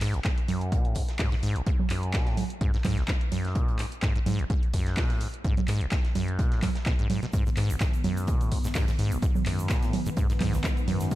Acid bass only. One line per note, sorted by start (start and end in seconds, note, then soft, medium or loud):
0.01 0.16 G#2 loud
0.14 0.20 G#1 medium
0.25 0.29 G#2 medium
0.48 0.74 F#2 medium
0.72 0.86 B2 loud
0.85 0.97 A2 loud
0.96 1.03 G#2 medium
1.19 1.30 G#2 medium
1.32 1.36 G#2 medium
1.43 1.57 G#2 loud
1.56 1.62 G#1 medium
1.67 1.71 G#2 medium
1.90 2.15 F#2 medium
2.14 2.28 B2 loud
2.27 2.39 A2 medium
2.37 2.45 G#2 medium
2.61 2.72 G#2 medium
2.74 2.77 G#2 medium
2.85 2.99 G#2 loud
2.98 3.03 G#1 medium
3.08 3.13 G#2 medium
3.32 3.57 F#2 medium
3.56 3.70 B2 loud
3.68 3.81 A2 loud
3.79 3.86 G#2 medium
4.03 4.13 G#2 medium
4.16 4.19 G#2 medium
4.26 4.41 G#2 loud
4.39 4.45 G#1 medium
4.50 4.54 G#2 medium
4.74 4.99 F#2 medium
4.97 5.12 B2 loud
5.10 5.22 A2 loud
5.21 5.28 G#2 medium
5.45 5.55 G#2 medium
5.57 5.61 G#2 medium
5.68 5.83 G#2 loud
5.81 5.87 G#1 medium
5.92 5.96 G#2 medium
6.15 6.40 F#2 medium
6.39 6.53 B2 loud
6.52 6.64 A2 loud
6.63 6.70 G#2 medium
6.86 6.93 B2 medium
6.99 7.08 G#2 medium
7.10 7.20 G#2 medium
7.23 7.26 B2 medium
7.33 7.44 G#2 medium
7.46 7.50 G#2 medium
7.57 7.71 G#2 loud
7.70 7.76 G#1 medium
7.81 7.85 G#2 medium
8.04 8.29 F#2 medium
8.28 8.42 B2 loud
8.41 8.53 A2 loud
8.52 8.59 G#2 medium
8.64 8.68 G#2 medium
8.75 8.86 G#2 medium
8.88 8.92 G#2 medium
8.99 9.13 G#2 loud
9.12 9.18 G#1 medium
9.22 9.27 G#2 medium
9.46 9.71 F#2 medium
9.70 9.84 B2 loud
9.83 9.95 A2 loud
9.93 10.00 G#2 medium
10.06 10.10 G#2 medium
10.17 10.28 G#2 medium
10.30 10.33 G#2 medium
10.41 10.55 G#2 loud
10.53 10.59 G#1 medium
10.64 10.68 G#2 medium
10.88 11.13 F#2 medium
11.11 11.15 B2 loud